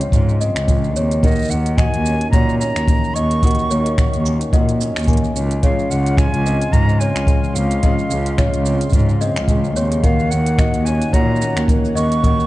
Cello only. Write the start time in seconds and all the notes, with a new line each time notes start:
0.12 G#2
0.56 C#2
0.95 D#2
1.50 D#2
1.93 D#2
2.33 A#2
2.76 D#2
3.15 D#2
3.70 D#2
4.13 D#2
4.53 A#2
4.96 D#2
5.36 C#2
5.91 C#2
6.33 C#2
6.73 G#2
7.15 C#2
7.55 C#2
8.10 C#2
8.53 C#2
8.93 G#2
9.36 C#2
9.76 D#2
10.31 D#2
10.74 D#2
11.13 A#2
11.56 D#2
11.96 D#2